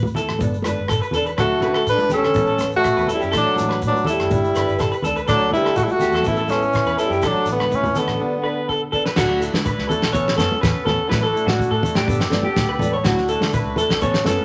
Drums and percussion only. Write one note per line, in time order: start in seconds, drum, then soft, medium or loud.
0.03 high conga medium
0.03 low conga medium
0.03 shekere soft
0.15 closed hi-hat soft
0.15 low conga medium
0.15 shekere medium
0.29 cross-stick medium
0.29 shekere soft
0.39 kick medium
0.39 high conga medium
0.39 shekere loud
0.54 shekere soft
0.62 cross-stick medium
0.62 closed hi-hat soft
0.62 high conga medium
0.62 shekere medium
0.88 kick medium
0.88 cross-stick medium
0.88 shekere medium
1.03 shekere soft
1.11 closed hi-hat soft
1.11 low conga medium
1.11 shekere medium
1.26 shekere soft
1.38 kick medium
1.38 cross-stick medium
1.38 shekere medium
1.60 closed hi-hat soft
1.60 high conga medium
1.74 cross-stick medium
1.87 kick medium
1.87 shekere medium
1.98 high conga medium
1.98 shekere soft
2.09 closed hi-hat soft
2.09 low conga medium
2.09 shekere medium
2.24 cross-stick medium
2.24 shekere soft
2.34 kick loud
2.34 high conga medium
2.34 shekere loud
2.47 shekere soft
2.58 cross-stick medium
2.58 closed hi-hat medium
2.58 high conga medium
2.58 shekere medium
2.72 shekere soft
2.84 kick medium
2.84 cross-stick medium
2.84 shekere loud
2.98 shekere soft
3.07 closed hi-hat soft
3.07 low conga medium
3.07 shekere medium
3.22 shekere soft
3.33 kick medium
3.33 cross-stick medium
3.33 shekere loud
3.56 closed hi-hat medium
3.56 high conga medium
3.56 shekere medium
3.71 cross-stick medium
3.82 kick medium
3.82 shekere medium
3.92 high conga medium
3.92 shekere soft
4.04 closed hi-hat medium
4.04 low conga medium
4.04 shekere medium
4.19 cross-stick medium
4.19 shekere soft
4.30 kick medium
4.30 high conga medium
4.30 shekere loud
4.44 shekere soft
4.55 cross-stick medium
4.55 closed hi-hat soft
4.55 shekere medium
4.69 shekere soft
4.79 kick medium
4.79 cross-stick medium
4.79 shekere medium
4.92 shekere soft
5.02 closed hi-hat soft
5.02 low conga medium
5.02 shekere medium
5.17 shekere soft
5.28 kick medium
5.28 cross-stick medium
5.28 shekere medium
5.51 closed hi-hat medium
5.51 high conga medium
5.66 cross-stick medium
5.76 kick medium
5.76 shekere medium
5.88 high conga medium
5.88 shekere soft
6.00 closed hi-hat soft
6.00 low conga medium
6.00 shekere medium
6.12 cross-stick medium
6.12 shekere soft
6.23 kick loud
6.23 high conga medium
6.23 shekere loud
6.36 shekere soft
6.48 cross-stick medium
6.48 closed hi-hat medium
6.48 high conga medium
6.48 shekere medium
6.62 shekere soft
6.73 kick medium
6.73 cross-stick medium
6.73 shekere medium
6.86 shekere soft
6.98 closed hi-hat soft
6.98 shekere medium
7.12 shekere soft
7.22 kick medium
7.22 cross-stick medium
7.22 shekere medium
7.46 closed hi-hat soft
7.46 shekere medium
7.60 cross-stick medium
7.60 high conga medium
7.71 kick medium
7.71 shekere medium
7.84 high conga medium
7.84 low conga medium
7.84 shekere soft
7.95 closed hi-hat medium
7.95 low conga medium
7.95 shekere medium
8.08 cross-stick medium
8.08 shekere soft
8.69 kick soft
8.93 kick medium
9.06 snare medium
9.16 kick loud
9.16 snare medium
9.16 crash loud
9.16 shekere loud
9.42 shekere medium
9.54 snare medium
9.54 high conga medium
9.65 kick medium
9.65 shekere medium
9.79 snare soft
9.90 low conga medium
9.90 shekere medium
10.02 snare medium
10.14 kick medium
10.14 shekere medium
10.28 snare medium
10.38 snare medium
10.38 high conga medium
10.38 shekere medium
10.52 high conga medium
10.63 kick loud
10.63 snare medium
10.63 shekere medium
10.87 snare soft
10.87 high conga medium
10.87 low conga medium
11.11 kick loud
11.11 snare medium
11.11 shekere medium
11.37 shekere medium
11.48 snare medium
11.48 high conga medium
11.59 kick medium
11.59 shekere medium
11.83 low conga medium
11.83 shekere medium
11.95 snare medium
12.08 kick loud
12.08 shekere loud
12.21 snare medium
12.31 snare medium
12.31 high conga medium
12.31 shekere medium
12.43 high conga medium
12.56 kick medium
12.56 snare medium
12.56 shekere loud
12.79 high conga medium
12.79 low conga medium
12.79 shekere medium
13.04 kick medium
13.04 snare medium
13.04 shekere loud
13.17 snare soft
13.28 shekere medium
13.40 snare medium
13.40 high conga medium
13.53 kick medium
13.53 shekere medium
13.76 low conga medium
13.76 shekere medium
13.90 snare medium
14.02 kick loud
14.02 shekere loud
14.14 snare medium
14.24 snare medium
14.24 high conga medium
14.24 shekere medium
14.37 high conga medium